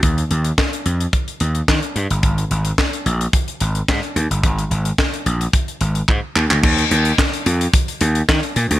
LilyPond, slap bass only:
\new Staff \with { instrumentName = "Slap bass" } { \clef bass \time 4/4 \key c \phrygian \tempo 4 = 109 ees,8 ees,8 r8 f,8 r8 ees,8 ees16 r16 g,16 g,,16 | aes,,8 aes,,8 r8 bes,,8 r8 aes,,8 aes,16 r16 ees,16 g,,16 | aes,,8 aes,,8 r8 bes,,8 r8 aes,,8 aes,16 r16 ees,16 d,16 | ees,8 ees,8 r8 f,8 r8 ees,8 ees16 r16 bes,16 d,16 | }